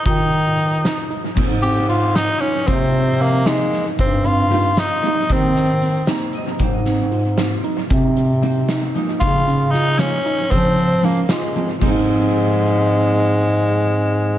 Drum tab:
CC |-----|x----|-----|-----|
HH |xxxxx|-xxxx|xxxxx|xxxxx|
SD |---o-|---o-|---oo|---oo|
BD |o----|o----|o----|o----|

CC |-----|-----|-----|-----|
HH |xxxxx|xxxxx|xxxxx|xxxxx|
SD |-o-o-|-o-o-|---o-|--oo-|
BD |o----|o----|o----|o----|

CC |-----|x----|-----|
HH |xxxxx|-----|-----|
SD |---o-|-----|-----|
BD |o----|o----|-----|